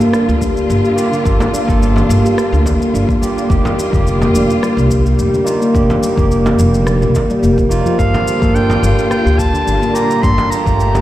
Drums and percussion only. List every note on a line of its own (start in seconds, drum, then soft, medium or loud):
0.01 shaker soft
0.13 cross-stick medium
0.13 shaker soft
0.29 shaker soft
0.41 kick medium
0.41 shaker medium
0.57 shaker soft
0.70 shaker soft
0.85 shaker soft
0.98 shaker medium
1.13 shaker soft
1.25 kick loud
1.25 shaker soft
1.40 frame drum loud
1.40 shaker soft
1.54 shaker medium
1.69 kick loud
1.69 shaker soft
1.83 shaker soft
1.96 frame drum loud
1.96 shaker soft
2.10 shaker medium
2.26 shaker soft
2.38 cross-stick medium
2.38 shaker soft
2.54 shaker soft
2.66 kick medium
2.66 frame drum medium
2.66 shaker medium
2.82 shaker soft
2.95 shaker soft
3.09 kick loud
3.09 shaker soft
3.23 shaker medium
3.38 shaker soft
3.50 kick loud
3.50 shaker soft
3.65 frame drum loud
3.65 shaker soft
3.79 shaker medium
3.93 kick loud
3.93 shaker soft
4.07 shaker soft
4.22 frame drum medium
4.22 shaker soft
4.35 shaker medium
4.50 shaker soft
4.63 cross-stick medium
4.63 shaker soft
4.78 shaker soft
4.90 kick medium
4.90 shaker medium
5.06 shaker soft
5.19 shaker medium
5.34 shaker soft
5.47 shaker medium
5.62 shaker soft
5.75 kick loud
5.75 shaker soft
5.90 frame drum medium
5.90 shaker soft
6.03 shaker medium
6.18 kick loud
6.18 shaker soft
6.31 shaker soft
6.46 frame drum loud
6.46 shaker soft
6.59 shaker medium
6.74 shaker soft
6.87 cross-stick medium
6.87 shaker medium
7.02 shaker soft
7.15 kick medium
7.15 frame drum loud
7.15 shaker medium
7.30 shaker soft
7.43 shaker soft
7.58 kick loud
7.58 shaker soft
7.71 shaker medium
7.86 shaker soft
7.99 kick loud
7.99 shaker soft
8.14 frame drum medium
8.14 shaker soft
8.28 shaker medium
8.42 kick loud
8.42 shaker soft
8.56 shaker soft
8.70 frame drum loud
8.70 shaker soft
8.84 shaker medium
8.99 shaker soft
9.11 cross-stick medium
9.11 shaker soft
9.27 shaker soft
9.39 kick medium
9.39 shaker medium
9.55 shaker soft
9.68 shaker soft
9.83 shaker soft
9.96 shaker medium
10.11 shaker soft
10.23 kick loud
10.23 shaker soft
10.38 frame drum loud
10.38 shaker soft
10.52 shaker medium
10.66 kick loud
10.66 shaker soft
10.80 shaker soft
10.95 frame drum medium
10.95 shaker soft